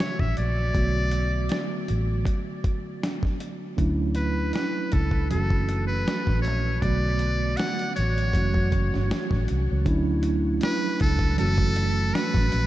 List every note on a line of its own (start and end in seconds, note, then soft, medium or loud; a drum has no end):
0.00 0.72 C#3 soft
0.00 0.71 E3 medium
0.00 0.72 F#3 soft
0.00 0.72 A3 soft
0.00 0.73 F#4 medium
0.00 0.21 C#5 medium
0.00 snare loud
0.00 closed hi-hat medium
0.19 0.36 A1 medium
0.19 0.37 E5 medium
0.19 kick medium
0.19 snare soft
0.37 0.72 A#1 medium
0.37 1.85 D5 medium
0.37 closed hi-hat medium
0.73 1.47 B1 medium
0.73 3.73 D3 medium
0.73 3.74 F#3 medium
0.73 3.74 A3 medium
0.73 3.75 B3 medium
0.73 3.75 F#4 medium
0.73 kick medium
0.73 closed hi-hat medium
1.11 closed hi-hat medium
1.49 snare medium
1.49 closed hi-hat medium
1.88 2.24 A1 medium
1.88 closed hi-hat medium
2.25 kick medium
2.25 closed hi-hat medium
2.64 kick medium
2.64 closed hi-hat medium
3.03 snare loud
3.03 closed hi-hat medium
3.23 kick medium
3.23 snare soft
3.40 closed hi-hat medium
3.77 4.51 D2 medium
3.77 5.27 F#3 medium
3.77 5.27 A3 medium
3.77 5.27 C#4 medium
3.77 5.26 D4 medium
3.77 5.28 E4 medium
3.77 kick medium
3.77 closed hi-hat medium
4.15 4.51 B4 medium
4.15 closed hi-hat medium
4.53 4.94 B4 medium
4.53 snare medium
4.53 closed hi-hat medium
4.92 5.34 C#2 medium
4.92 5.30 A4 medium
4.92 kick medium
4.92 closed hi-hat medium
5.11 kick medium
5.29 6.03 F#1 medium
5.29 6.78 E3 medium
5.29 6.79 F#3 medium
5.29 6.79 A3 medium
5.29 6.79 C#4 soft
5.29 6.80 F#4 medium
5.29 5.84 A4 medium
5.29 closed hi-hat medium
5.50 kick medium
5.69 closed hi-hat medium
5.88 6.40 B4 medium
6.08 snare medium
6.08 closed hi-hat medium
6.27 6.47 A1 medium
6.27 kick medium
6.27 snare soft
6.42 6.83 C#5 medium
6.42 closed hi-hat medium
6.47 6.80 A#1 medium
6.81 7.55 B1 medium
6.81 8.30 D3 medium
6.81 8.31 F#3 medium
6.81 8.31 A3 medium
6.81 8.32 B3 medium
6.81 8.32 F#4 medium
6.81 7.58 D5 medium
6.81 kick medium
6.81 closed hi-hat medium
7.19 closed hi-hat medium
7.57 7.95 F#5 medium
7.57 snare loud
7.57 closed hi-hat medium
7.79 closed hi-hat soft
7.96 8.32 A1 medium
7.96 9.44 C#5 medium
7.96 closed hi-hat medium
8.18 closed hi-hat soft
8.33 8.53 F#1 medium
8.33 9.82 E3 medium
8.33 9.83 F#3 medium
8.33 9.83 A3 medium
8.33 9.84 C#4 medium
8.33 9.84 F#4 medium
8.33 kick medium
8.33 closed hi-hat medium
8.54 8.71 F#2 medium
8.54 kick medium
8.72 8.91 F#1 medium
8.72 kick medium
8.72 closed hi-hat medium
8.94 9.10 G1 medium
8.94 snare soft
9.11 snare loud
9.11 closed hi-hat medium
9.31 9.47 A1 medium
9.31 kick medium
9.31 snare soft
9.48 9.68 C2 medium
9.48 closed hi-hat medium
9.72 9.86 C#2 medium
9.85 10.58 D2 loud
9.85 11.35 F#3 medium
9.85 11.35 A3 medium
9.85 11.36 C#4 medium
9.85 11.34 D4 medium
9.85 11.36 E4 medium
9.85 kick loud
9.85 closed hi-hat medium
10.23 closed hi-hat medium
10.61 10.98 B4 loud
10.61 snare loud
10.61 closed hi-hat medium
11.00 11.35 C#2 medium
11.00 11.36 A4 medium
11.00 kick medium
11.00 closed hi-hat medium
11.19 kick medium
11.37 12.11 F#1 loud
11.37 12.67 E3 medium
11.37 12.67 F#3 medium
11.37 12.67 A3 medium
11.37 12.67 C#4 medium
11.37 12.67 F#4 medium
11.37 12.16 A4 loud
11.37 closed hi-hat medium
11.58 kick medium
11.76 closed hi-hat medium
12.14 12.67 B4 loud
12.14 snare loud
12.14 closed hi-hat medium
12.34 12.51 A1 medium
12.34 kick medium
12.34 snare soft
12.52 12.67 A#1 medium
12.52 closed hi-hat medium